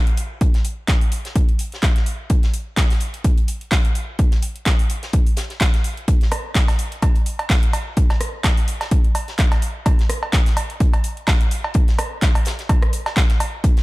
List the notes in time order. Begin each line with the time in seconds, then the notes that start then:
0.07 closed hi-hat
0.17 closed hi-hat, open hi-hat
0.41 kick, closed hi-hat
0.54 snare, closed hi-hat
0.65 closed hi-hat, open hi-hat
0.88 kick, snare, clap, closed hi-hat
1.01 open hi-hat
1.12 closed hi-hat, open hi-hat
1.25 snare, closed hi-hat
1.36 kick, closed hi-hat
1.49 closed hi-hat
1.59 closed hi-hat, open hi-hat
1.72 snare, closed hi-hat
1.82 kick, snare, clap, closed hi-hat
1.96 snare, closed hi-hat
2.06 closed hi-hat, open hi-hat
2.30 kick, closed hi-hat
2.43 snare, closed hi-hat
2.54 closed hi-hat, open hi-hat
2.77 kick, snare, clap, closed hi-hat
2.90 snare, open hi-hat
3.00 closed hi-hat, open hi-hat
3.14 closed hi-hat
3.24 kick, closed hi-hat
3.38 closed hi-hat
3.48 closed hi-hat, open hi-hat
3.61 closed hi-hat
3.71 kick, snare, clap, closed hi-hat, open hi-hat
3.85 closed hi-hat
3.95 closed hi-hat, open hi-hat
4.19 kick, closed hi-hat
4.32 snare, closed hi-hat
4.42 closed hi-hat, open hi-hat
4.56 closed hi-hat
4.66 kick, snare, clap, closed hi-hat
4.79 open hi-hat
4.90 closed hi-hat, open hi-hat
5.03 snare, closed hi-hat
5.13 kick, closed hi-hat
5.27 open hi-hat
5.37 snare, closed hi-hat, open hi-hat
5.50 snare, closed hi-hat
5.60 kick, snare, clap, closed hi-hat
5.74 snare, closed hi-hat
5.84 closed hi-hat, open hi-hat
5.97 closed hi-hat
6.08 kick, closed hi-hat
6.21 snare, closed hi-hat
6.31 cross-stick, closed hi-hat, open hi-hat, cowbell
6.55 kick, snare, clap, closed hi-hat
6.68 snare, open hi-hat, cowbell
6.79 closed hi-hat, open hi-hat
6.92 closed hi-hat
7.02 kick, closed hi-hat, cowbell
7.15 closed hi-hat
7.26 closed hi-hat, open hi-hat
7.39 closed hi-hat, cowbell
7.50 kick, snare, clap, closed hi-hat, open hi-hat
7.63 closed hi-hat
7.73 closed hi-hat, open hi-hat, cowbell
7.97 kick, closed hi-hat
8.09 snare, closed hi-hat, cowbell
8.20 cross-stick, closed hi-hat, open hi-hat
8.44 kick, snare, clap, closed hi-hat, cowbell
8.57 open hi-hat
8.68 closed hi-hat, open hi-hat
8.81 snare, closed hi-hat, cowbell
8.91 kick, closed hi-hat
9.04 closed hi-hat
9.15 closed hi-hat, open hi-hat, cowbell
9.28 snare, closed hi-hat
9.38 kick, snare, clap, closed hi-hat
9.51 snare, closed hi-hat, cowbell
9.62 closed hi-hat, open hi-hat
9.86 kick, closed hi-hat, cowbell
9.99 snare, closed hi-hat
10.09 cross-stick, closed hi-hat, open hi-hat
10.23 cowbell
10.33 kick, snare, clap, closed hi-hat
10.46 snare, open hi-hat
10.57 closed hi-hat, open hi-hat, cowbell
10.70 closed hi-hat
10.80 kick, closed hi-hat
10.94 closed hi-hat, cowbell
11.04 closed hi-hat, open hi-hat
11.17 closed hi-hat
11.27 kick, snare, clap, closed hi-hat, open hi-hat, cowbell
11.41 closed hi-hat
11.51 closed hi-hat, open hi-hat
11.64 cowbell
11.74 kick, closed hi-hat
11.88 snare, closed hi-hat
11.99 cross-stick, closed hi-hat, open hi-hat, cowbell
12.22 kick, snare, clap, closed hi-hat
12.35 open hi-hat, cowbell
12.45 snare, closed hi-hat, open hi-hat
12.59 snare, closed hi-hat
12.69 kick, closed hi-hat, cowbell
12.82 cross-stick, closed hi-hat
12.93 closed hi-hat, open hi-hat
13.06 snare, closed hi-hat, cowbell
13.16 kick, snare, clap, closed hi-hat
13.29 snare, closed hi-hat
13.40 closed hi-hat, open hi-hat, cowbell
13.64 kick, closed hi-hat
13.77 snare, closed hi-hat